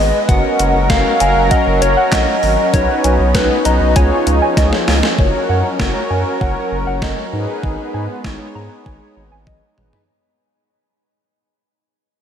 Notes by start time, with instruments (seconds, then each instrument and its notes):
Already playing: analog synth pad G#3 B3, synth pluck D#5, soft synth lead D#5
0.00 sub bass G#1
0.29 sub bass F#1, analog synth pad F#3 C#4 A#4, analog polysynth C#4 F#4 A#4, soft synth lead F#5, kick, closed hi-hat
0.59 sub bass F#1, synth pluck F#5, closed hi-hat
0.75 sub bass F#1
0.90 sub bass F#1, analog polysynth C#4 F#4 A#4, soft synth lead F5, kick, snare, closed hi-hat
1.20 sub bass F#1, synth pluck G#5, closed hi-hat
1.36 sub bass F#1
1.51 soft synth lead D#5, synth pluck F#5, kick, closed hi-hat
1.67 sub bass F#1
1.82 sub bass F#1, soft synth lead C#5, closed hi-hat
1.97 synth pluck F#5
2.12 sub bass A#1, soft synth lead D#5, synth pluck F#5, kick, snare, clap, closed hi-hat
2.43 sub bass G#1, open hi-hat
2.74 sub bass B1, analog synth pad B3 D#4, analog polysynth D#4 F#4 B4, soft synth lead C#5, kick, closed hi-hat
3.04 sub bass B1, synth pluck G#5, closed hi-hat
3.20 sub bass B1
3.35 sub bass B1, analog polysynth D#4 F#4 B4, soft synth lead B4, kick, snare, closed hi-hat
3.65 sub bass B1, soft synth lead D#5, synth pluck A#5, closed hi-hat
3.81 sub bass B1
3.96 sub bass C#2, analog synth pad F3, analog polysynth F4 G#4 C#5, soft synth lead C#5, synth pluck G#5, kick, closed hi-hat
4.27 sub bass C#2, closed hi-hat
4.42 synth pluck G#5
4.57 sub bass C#2, synth pluck D#5, kick, snare, closed hi-hat
4.73 snare
4.88 sub bass C#2, snare, open hi-hat
5.03 snare
5.18 sub bass F#1, analog synth pad F#3 C#4 A#4, analog polysynth F#4 A#4 C#5, kick
5.49 sub bass F#2, synth pluck F#5
5.80 sub bass F#1, analog polysynth F#4 A#4 C#5, kick, snare
6.10 sub bass F#2, synth pluck G#5
6.41 sub bass F#1, synth pluck F#5, kick
6.72 sub bass F#1
6.87 sub bass F#1, synth pluck F#5
7.02 sub bass F#1, synth pluck D#5, kick, snare
7.33 sub bass G#2, analog synth pad G#3 B3, analog polysynth D#4 G#4 B4
7.63 sub bass G#1, kick
7.94 sub bass G#2, synth pluck G#5
8.24 sub bass G#1, analog polysynth D#4 G#4 C#5, kick, snare
8.55 sub bass G#2, synth pluck A#5
8.86 sub bass G#1, synth pluck G#5, kick
9.17 sub bass G#1
9.32 sub bass G#1, synth pluck G#5
9.47 sub bass G#1, synth pluck D#5, kick, high tom
9.78 sub bass G#1, analog polysynth D#4 G#4 B4, mid tom
9.93 floor tom